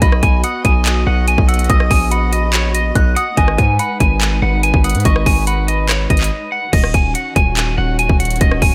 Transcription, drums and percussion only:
0.02 kick loud
0.02 closed hi-hat medium
0.12 cross-stick loud
0.23 kick medium
0.23 closed hi-hat medium
0.44 closed hi-hat medium
0.65 kick medium
0.65 closed hi-hat medium
0.86 clap loud
0.86 closed hi-hat medium
1.28 closed hi-hat medium
1.38 kick loud
1.49 closed hi-hat medium
1.54 closed hi-hat medium
1.59 closed hi-hat medium
1.64 closed hi-hat soft
1.70 kick loud
1.70 closed hi-hat medium
1.80 cross-stick loud
1.91 kick loud
1.91 open hi-hat medium
2.11 closed hi-hat medium
2.33 closed hi-hat medium
2.53 clap loud
2.53 closed hi-hat medium
2.75 closed hi-hat medium
2.95 kick medium
2.95 closed hi-hat medium
3.17 closed hi-hat medium
3.37 kick loud
3.37 closed hi-hat medium
3.48 cross-stick loud
3.58 kick medium
3.58 closed hi-hat medium
3.79 closed hi-hat medium
4.00 kick loud
4.00 closed hi-hat medium
4.21 clap loud
4.21 closed hi-hat medium
4.63 closed hi-hat medium
4.74 kick loud
4.84 closed hi-hat medium
4.90 closed hi-hat medium
4.95 closed hi-hat medium
5.00 closed hi-hat soft
5.05 kick loud
5.05 closed hi-hat medium
5.16 cross-stick loud
5.26 kick loud
5.26 open hi-hat medium
5.47 closed hi-hat medium
5.68 closed hi-hat medium
5.89 cross-stick medium
5.89 clap loud
5.89 closed hi-hat medium
6.10 kick medium
6.10 closed hi-hat medium
6.17 clap medium
6.17 closed hi-hat medium
6.24 closed hi-hat medium
6.73 kick loud
6.73 closed hi-hat medium
6.73 crash loud
6.84 cross-stick loud
6.94 kick loud
6.94 closed hi-hat medium
7.15 closed hi-hat medium
7.36 kick loud
7.36 closed hi-hat medium
7.57 clap loud
7.57 closed hi-hat medium
7.99 closed hi-hat medium
8.09 kick loud
8.20 closed hi-hat medium
8.25 closed hi-hat medium
8.30 closed hi-hat medium
8.36 closed hi-hat soft
8.41 kick loud
8.41 closed hi-hat medium
8.51 cross-stick loud
8.62 kick loud
8.62 open hi-hat medium

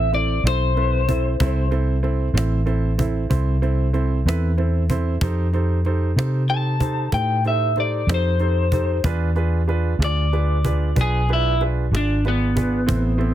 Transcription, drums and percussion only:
0.14 cajon slap soft
0.47 cajon slap medium
0.77 cajon slap soft
1.09 cajon bass medium
1.40 cajon bass loud
1.72 cajon slap soft
2.04 cajon slap soft
2.38 cajon slap medium
2.67 cajon slap soft
2.99 cajon bass medium
3.31 cajon bass medium
3.63 cajon slap soft
3.94 cajon slap soft
4.29 cajon slap medium
4.58 cajon slap soft
4.90 cajon bass medium
5.21 cajon bass loud
5.53 cajon slap soft
5.85 cajon slap soft
6.19 cajon slap medium
6.49 cajon slap soft
6.80 cajon bass medium
7.12 cajon bass medium
7.12 cajon slap soft
7.45 cajon slap soft
7.76 cajon slap soft
7.78 cajon slap soft
8.09 cajon slap medium
8.39 cajon slap soft
8.72 cajon bass medium
9.04 cajon bass medium
9.36 cajon slap soft
9.69 cajon slap soft
10.02 cajon slap medium
10.33 cajon slap soft
10.65 cajon bass medium
10.96 cajon bass medium
11.29 cajon slap soft
11.61 cajon slap soft
11.95 cajon slap medium
12.25 cajon slap soft
12.57 cajon bass medium
12.89 cajon bass loud
13.21 cajon slap soft

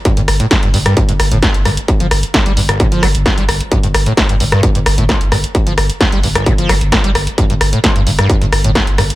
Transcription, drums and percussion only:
0.05 kick loud
0.05 closed hi-hat medium
0.17 closed hi-hat medium
0.28 cross-stick medium
0.28 open hi-hat loud
0.40 closed hi-hat medium
0.51 kick loud
0.51 snare loud
0.51 closed hi-hat medium
0.63 closed hi-hat medium
0.74 open hi-hat medium
0.86 cross-stick medium
0.86 closed hi-hat medium
0.97 kick loud
0.97 closed hi-hat medium
1.09 closed hi-hat medium
1.20 cross-stick medium
1.20 open hi-hat loud
1.32 closed hi-hat medium
1.43 kick loud
1.43 cross-stick medium
1.43 snare loud
1.43 closed hi-hat medium
1.54 closed hi-hat medium
1.65 cross-stick medium
1.65 open hi-hat medium
1.77 closed hi-hat medium
1.88 kick loud
1.88 closed hi-hat medium
2.00 closed hi-hat medium
2.11 cross-stick medium
2.11 open hi-hat loud
2.23 closed hi-hat medium
2.34 kick loud
2.34 snare loud
2.34 closed hi-hat medium
2.46 closed hi-hat medium
2.57 open hi-hat medium
2.69 cross-stick medium
2.69 closed hi-hat medium
2.80 kick loud
2.80 closed hi-hat medium
2.92 closed hi-hat medium
3.03 cross-stick medium
3.03 open hi-hat loud
3.15 closed hi-hat medium
3.26 kick loud
3.26 cross-stick medium
3.26 snare loud
3.26 closed hi-hat medium
3.38 closed hi-hat medium
3.49 cross-stick medium
3.49 open hi-hat loud
3.61 closed hi-hat medium
3.72 kick loud
3.72 closed hi-hat medium
3.83 closed hi-hat medium
3.94 cross-stick loud
3.94 open hi-hat loud
4.06 closed hi-hat medium
4.17 kick loud
4.17 snare loud
4.17 closed hi-hat medium
4.29 closed hi-hat medium
4.40 open hi-hat medium
4.52 cross-stick medium
4.52 closed hi-hat soft
4.63 kick loud
4.63 closed hi-hat medium
4.75 closed hi-hat soft
4.86 cross-stick loud
4.86 open hi-hat loud
4.98 closed hi-hat medium
5.09 kick loud
5.09 cross-stick medium
5.09 snare loud
5.09 closed hi-hat medium
5.21 closed hi-hat soft
5.32 cross-stick medium
5.32 open hi-hat medium
5.44 closed hi-hat medium
5.55 kick loud
5.55 closed hi-hat medium
5.67 closed hi-hat medium
5.78 cross-stick loud
5.78 open hi-hat loud
5.90 closed hi-hat soft
6.01 kick loud
6.01 snare loud
6.01 closed hi-hat medium
6.12 closed hi-hat soft
6.23 open hi-hat medium
6.35 cross-stick loud
6.35 closed hi-hat medium
6.46 kick loud
6.46 closed hi-hat medium
6.58 closed hi-hat soft
6.69 cross-stick loud
6.69 open hi-hat loud
6.81 closed hi-hat soft
6.92 kick loud
6.92 cross-stick medium
6.92 snare loud
6.92 closed hi-hat medium
7.04 closed hi-hat medium
7.15 cross-stick loud
7.15 open hi-hat medium
7.27 closed hi-hat medium
7.38 kick loud
7.38 closed hi-hat medium
7.50 closed hi-hat medium
7.61 cross-stick medium
7.61 open hi-hat loud
7.73 closed hi-hat soft
7.84 kick loud
7.84 snare loud
7.84 closed hi-hat medium
7.96 closed hi-hat medium
8.07 open hi-hat medium
8.19 cross-stick medium
8.19 closed hi-hat medium
8.30 kick loud
8.30 closed hi-hat medium
8.42 closed hi-hat medium
8.52 cross-stick medium
8.52 open hi-hat loud
8.64 closed hi-hat medium
8.75 kick loud
8.75 cross-stick medium
8.75 snare loud
8.75 closed hi-hat medium
8.87 closed hi-hat medium
8.98 cross-stick medium
8.98 open hi-hat medium
9.10 closed hi-hat medium

